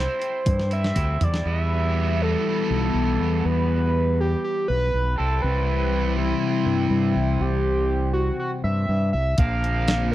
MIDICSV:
0, 0, Header, 1, 6, 480
1, 0, Start_track
1, 0, Tempo, 495868
1, 1410, Time_signature, 4, 2, 24, 8
1, 9822, End_track
2, 0, Start_track
2, 0, Title_t, "Analog synth lead"
2, 0, Program_c, 0, 81
2, 0, Note_on_c, 0, 72, 89
2, 696, Note_off_c, 0, 72, 0
2, 706, Note_on_c, 0, 76, 93
2, 1193, Note_on_c, 0, 74, 88
2, 1208, Note_off_c, 0, 76, 0
2, 1419, Note_off_c, 0, 74, 0
2, 1425, Note_on_c, 0, 76, 103
2, 2146, Note_on_c, 0, 69, 89
2, 2161, Note_off_c, 0, 76, 0
2, 3340, Note_on_c, 0, 71, 106
2, 3355, Note_off_c, 0, 69, 0
2, 4059, Note_off_c, 0, 71, 0
2, 4071, Note_on_c, 0, 67, 81
2, 4288, Note_off_c, 0, 67, 0
2, 4300, Note_on_c, 0, 67, 89
2, 4522, Note_off_c, 0, 67, 0
2, 4532, Note_on_c, 0, 71, 91
2, 4981, Note_off_c, 0, 71, 0
2, 5013, Note_on_c, 0, 69, 83
2, 5238, Note_off_c, 0, 69, 0
2, 5247, Note_on_c, 0, 71, 106
2, 5934, Note_off_c, 0, 71, 0
2, 5980, Note_on_c, 0, 64, 99
2, 7171, Note_on_c, 0, 67, 105
2, 7185, Note_off_c, 0, 64, 0
2, 7867, Note_off_c, 0, 67, 0
2, 7872, Note_on_c, 0, 66, 88
2, 8105, Note_off_c, 0, 66, 0
2, 8124, Note_on_c, 0, 66, 90
2, 8234, Note_off_c, 0, 66, 0
2, 8362, Note_on_c, 0, 76, 95
2, 8811, Note_off_c, 0, 76, 0
2, 8836, Note_on_c, 0, 76, 94
2, 9065, Note_off_c, 0, 76, 0
2, 9088, Note_on_c, 0, 77, 111
2, 9766, Note_off_c, 0, 77, 0
2, 9792, Note_on_c, 0, 70, 98
2, 9822, Note_off_c, 0, 70, 0
2, 9822, End_track
3, 0, Start_track
3, 0, Title_t, "Distorted electric guitar"
3, 0, Program_c, 1, 30
3, 209, Note_on_c, 1, 60, 57
3, 684, Note_on_c, 1, 64, 71
3, 696, Note_off_c, 1, 60, 0
3, 708, Note_on_c, 1, 60, 56
3, 908, Note_off_c, 1, 60, 0
3, 920, Note_off_c, 1, 64, 0
3, 1422, Note_on_c, 1, 64, 71
3, 5014, Note_off_c, 1, 64, 0
3, 9073, Note_on_c, 1, 53, 67
3, 9097, Note_on_c, 1, 62, 74
3, 9822, Note_off_c, 1, 53, 0
3, 9822, Note_off_c, 1, 62, 0
3, 9822, End_track
4, 0, Start_track
4, 0, Title_t, "Clean electric guitar"
4, 0, Program_c, 2, 27
4, 0, Note_on_c, 2, 55, 74
4, 0, Note_on_c, 2, 60, 70
4, 0, Note_on_c, 2, 64, 75
4, 0, Note_on_c, 2, 69, 74
4, 193, Note_off_c, 2, 69, 0
4, 201, Note_off_c, 2, 64, 0
4, 205, Note_on_c, 2, 69, 67
4, 207, Note_off_c, 2, 60, 0
4, 212, Note_on_c, 2, 64, 67
4, 216, Note_off_c, 2, 55, 0
4, 227, Note_on_c, 2, 55, 56
4, 930, Note_off_c, 2, 55, 0
4, 932, Note_on_c, 2, 48, 91
4, 934, Note_on_c, 2, 52, 81
4, 940, Note_off_c, 2, 64, 0
4, 940, Note_off_c, 2, 69, 0
4, 942, Note_on_c, 2, 55, 90
4, 944, Note_on_c, 2, 60, 84
4, 951, Note_on_c, 2, 69, 96
4, 952, Note_on_c, 2, 64, 96
4, 1154, Note_off_c, 2, 69, 0
4, 1162, Note_off_c, 2, 64, 0
4, 1165, Note_on_c, 2, 69, 72
4, 1170, Note_off_c, 2, 60, 0
4, 1172, Note_off_c, 2, 55, 0
4, 1173, Note_on_c, 2, 64, 66
4, 1387, Note_off_c, 2, 52, 0
4, 1394, Note_off_c, 2, 69, 0
4, 1398, Note_off_c, 2, 48, 0
4, 1398, Note_off_c, 2, 64, 0
4, 1399, Note_on_c, 2, 52, 66
4, 1406, Note_on_c, 2, 55, 71
4, 1423, Note_on_c, 2, 59, 68
4, 1426, Note_on_c, 2, 66, 73
4, 4994, Note_off_c, 2, 52, 0
4, 4995, Note_off_c, 2, 55, 0
4, 4999, Note_on_c, 2, 48, 72
4, 5006, Note_on_c, 2, 52, 74
4, 5007, Note_on_c, 2, 55, 73
4, 5011, Note_off_c, 2, 59, 0
4, 5015, Note_on_c, 2, 60, 73
4, 5021, Note_off_c, 2, 66, 0
4, 5021, Note_on_c, 2, 71, 80
4, 5024, Note_on_c, 2, 64, 76
4, 8841, Note_off_c, 2, 48, 0
4, 8844, Note_off_c, 2, 52, 0
4, 8845, Note_off_c, 2, 55, 0
4, 8849, Note_off_c, 2, 60, 0
4, 8852, Note_off_c, 2, 71, 0
4, 8854, Note_off_c, 2, 64, 0
4, 9078, Note_on_c, 2, 46, 68
4, 9090, Note_on_c, 2, 50, 70
4, 9094, Note_on_c, 2, 58, 82
4, 9099, Note_on_c, 2, 60, 77
4, 9103, Note_on_c, 2, 65, 72
4, 9822, Note_off_c, 2, 46, 0
4, 9822, Note_off_c, 2, 50, 0
4, 9822, Note_off_c, 2, 58, 0
4, 9822, Note_off_c, 2, 60, 0
4, 9822, Note_off_c, 2, 65, 0
4, 9822, End_track
5, 0, Start_track
5, 0, Title_t, "Fingered electric bass"
5, 0, Program_c, 3, 33
5, 452, Note_on_c, 3, 43, 85
5, 881, Note_off_c, 3, 43, 0
5, 930, Note_on_c, 3, 38, 82
5, 1146, Note_off_c, 3, 38, 0
5, 1176, Note_on_c, 3, 40, 78
5, 1390, Note_off_c, 3, 40, 0
5, 1409, Note_on_c, 3, 40, 97
5, 2273, Note_off_c, 3, 40, 0
5, 2617, Note_on_c, 3, 35, 95
5, 2831, Note_off_c, 3, 35, 0
5, 2848, Note_on_c, 3, 35, 94
5, 3066, Note_off_c, 3, 35, 0
5, 3096, Note_on_c, 3, 40, 79
5, 3311, Note_off_c, 3, 40, 0
5, 3343, Note_on_c, 3, 40, 97
5, 4202, Note_off_c, 3, 40, 0
5, 4547, Note_on_c, 3, 35, 86
5, 4758, Note_off_c, 3, 35, 0
5, 4783, Note_on_c, 3, 35, 99
5, 4996, Note_off_c, 3, 35, 0
5, 5030, Note_on_c, 3, 36, 79
5, 5239, Note_off_c, 3, 36, 0
5, 5266, Note_on_c, 3, 36, 106
5, 6122, Note_off_c, 3, 36, 0
5, 6447, Note_on_c, 3, 43, 85
5, 6667, Note_off_c, 3, 43, 0
5, 6681, Note_on_c, 3, 43, 105
5, 6903, Note_off_c, 3, 43, 0
5, 6926, Note_on_c, 3, 36, 82
5, 7145, Note_off_c, 3, 36, 0
5, 7169, Note_on_c, 3, 36, 99
5, 8030, Note_off_c, 3, 36, 0
5, 8364, Note_on_c, 3, 43, 91
5, 8582, Note_off_c, 3, 43, 0
5, 8605, Note_on_c, 3, 43, 101
5, 8822, Note_off_c, 3, 43, 0
5, 8846, Note_on_c, 3, 36, 85
5, 9062, Note_off_c, 3, 36, 0
5, 9086, Note_on_c, 3, 34, 107
5, 9822, Note_off_c, 3, 34, 0
5, 9822, End_track
6, 0, Start_track
6, 0, Title_t, "Drums"
6, 209, Note_on_c, 9, 46, 54
6, 306, Note_off_c, 9, 46, 0
6, 445, Note_on_c, 9, 46, 67
6, 445, Note_on_c, 9, 48, 54
6, 451, Note_on_c, 9, 36, 104
6, 542, Note_off_c, 9, 46, 0
6, 542, Note_off_c, 9, 48, 0
6, 548, Note_off_c, 9, 36, 0
6, 575, Note_on_c, 9, 38, 53
6, 672, Note_off_c, 9, 38, 0
6, 688, Note_on_c, 9, 46, 47
6, 785, Note_off_c, 9, 46, 0
6, 817, Note_on_c, 9, 38, 63
6, 914, Note_off_c, 9, 38, 0
6, 926, Note_on_c, 9, 46, 65
6, 929, Note_on_c, 9, 36, 75
6, 1023, Note_off_c, 9, 46, 0
6, 1026, Note_off_c, 9, 36, 0
6, 1171, Note_on_c, 9, 43, 84
6, 1171, Note_on_c, 9, 46, 46
6, 1267, Note_off_c, 9, 43, 0
6, 1267, Note_off_c, 9, 46, 0
6, 1294, Note_on_c, 9, 38, 72
6, 1391, Note_off_c, 9, 38, 0
6, 9078, Note_on_c, 9, 42, 86
6, 9083, Note_on_c, 9, 36, 110
6, 9175, Note_off_c, 9, 42, 0
6, 9180, Note_off_c, 9, 36, 0
6, 9331, Note_on_c, 9, 42, 58
6, 9428, Note_off_c, 9, 42, 0
6, 9561, Note_on_c, 9, 42, 73
6, 9567, Note_on_c, 9, 38, 103
6, 9658, Note_off_c, 9, 42, 0
6, 9664, Note_off_c, 9, 38, 0
6, 9822, End_track
0, 0, End_of_file